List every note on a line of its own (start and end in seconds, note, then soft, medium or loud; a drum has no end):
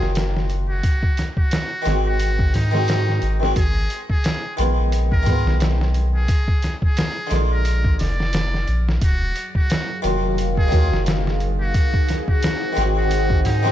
0.00 0.81 F#1 medium
0.00 0.80 D#3 medium
0.00 0.81 F#3 medium
0.00 0.83 A#3 medium
0.00 0.84 F4 loud
0.00 0.12 G#4 medium
0.00 snare soft
0.15 snare loud
0.15 open hi-hat medium
0.36 snare soft
0.50 open hi-hat medium
0.70 1.30 F#4 medium
0.83 kick loud
0.83 open hi-hat medium
1.03 kick medium
1.17 snare soft
1.17 open hi-hat medium
1.37 1.98 F#4 medium
1.37 kick medium
1.51 snare loud
1.51 open hi-hat medium
1.82 2.67 D#3 medium
1.82 2.68 G#3 medium
1.82 open hi-hat medium
1.86 2.51 G#1 medium
1.86 2.70 C4 medium
1.86 snare soft
1.91 2.71 F#4 medium
2.07 2.50 F#4 medium
2.20 open hi-hat medium
2.39 kick medium
2.54 3.19 G#2 medium
2.54 3.45 D#4 medium
2.54 snare soft
2.54 open hi-hat medium
2.71 3.36 D#3 medium
2.71 3.37 G#3 medium
2.71 3.37 C4 medium
2.71 snare soft
2.76 3.38 F#4 loud
2.88 snare loud
2.88 open hi-hat medium
3.09 snare soft
3.22 3.53 G#1 medium
3.22 open hi-hat medium
3.40 3.54 D#3 medium
3.40 3.55 G#3 medium
3.40 3.55 C4 medium
3.40 snare soft
3.45 3.56 F#4 medium
3.56 3.87 G#1 loud
3.56 4.05 G#4 loud
3.56 kick loud
3.56 open hi-hat medium
3.90 open hi-hat medium
4.10 4.55 G#4 medium
4.10 kick medium
4.24 snare loud
4.24 open hi-hat medium
4.57 5.24 A#1 medium
4.57 5.22 D#3 medium
4.57 5.23 G#3 medium
4.57 5.24 B3 medium
4.57 open hi-hat medium
4.61 5.25 F4 loud
4.92 open hi-hat medium
5.12 5.57 A#4 loud
5.12 kick medium
5.23 5.44 G#2 medium
5.23 6.25 D#3 medium
5.23 6.27 G#3 medium
5.23 kick medium
5.23 open hi-hat medium
5.29 6.28 B3 medium
5.29 6.30 F4 loud
5.46 6.26 B1 medium
5.46 snare soft
5.60 snare loud
5.60 open hi-hat medium
5.81 snare soft
5.94 open hi-hat medium
6.16 6.76 G#4 medium
6.28 kick loud
6.28 open hi-hat medium
6.48 kick medium
6.62 snare soft
6.62 open hi-hat medium
6.82 7.44 G#4 medium
6.82 kick medium
6.97 snare loud
6.97 open hi-hat medium
7.27 8.12 D3 medium
7.27 8.14 G#3 medium
7.27 open hi-hat medium
7.31 7.97 A#1 medium
7.31 8.15 A#3 medium
7.31 snare soft
7.36 8.17 F4 medium
7.52 7.96 A#4 medium
7.65 open hi-hat medium
7.84 kick medium
7.99 8.65 F1 medium
7.99 8.91 D5 medium
7.99 snare soft
7.99 open hi-hat medium
8.20 snare soft
8.33 snare loud
8.33 open hi-hat medium
8.54 snare soft
8.68 8.98 A#1 medium
8.68 open hi-hat medium
8.89 snare medium
9.01 9.32 D#1 loud
9.01 11.72 F#3 medium
9.01 13.72 D#4 medium
9.01 9.50 F#4 medium
9.01 13.72 G#4 medium
9.01 11.72 A#4 medium
9.01 11.72 F5 loud
9.01 kick loud
9.01 open hi-hat medium
9.36 open hi-hat medium
9.55 10.01 F#4 medium
9.55 kick medium
9.70 snare loud
9.70 open hi-hat medium
10.02 10.69 F1 medium
10.02 10.67 D#3 loud
10.02 10.69 F#3 medium
10.02 10.69 A#3 medium
10.02 open hi-hat medium
10.07 10.70 F4 loud
10.38 open hi-hat medium
10.57 11.03 G#4 loud
10.57 kick medium
10.68 11.71 D#3 medium
10.68 11.72 F#3 medium
10.68 kick medium
10.68 open hi-hat medium
10.72 10.89 D#2 medium
10.72 11.74 A#3 medium
10.77 11.75 F4 medium
10.92 11.72 F#1 medium
10.92 snare soft
11.06 snare loud
11.06 open hi-hat medium
11.27 snare medium
11.40 open hi-hat medium
11.62 12.21 F#4 medium
11.74 13.72 G#4 medium
11.74 13.72 C5 medium
11.74 13.72 F#5 medium
11.74 kick loud
11.74 open hi-hat medium
11.94 kick loud
12.09 snare soft
12.09 open hi-hat medium
12.28 12.89 F#4 medium
12.28 kick medium
12.43 snare loud
12.43 open hi-hat medium
12.73 13.58 D#3 medium
12.73 13.59 G#3 medium
12.73 open hi-hat medium
12.77 13.42 G#1 medium
12.77 13.61 C4 medium
12.77 snare soft
12.81 13.62 F#4 medium
12.98 13.41 F#4 medium
13.11 open hi-hat medium
13.30 kick loud
13.45 13.72 G#2 medium
13.45 13.72 D#4 loud
13.45 snare soft
13.45 open hi-hat medium
13.63 13.72 D#3 medium
13.63 13.72 G#3 medium
13.63 13.72 C4 medium
13.63 snare soft
13.67 13.72 F#4 loud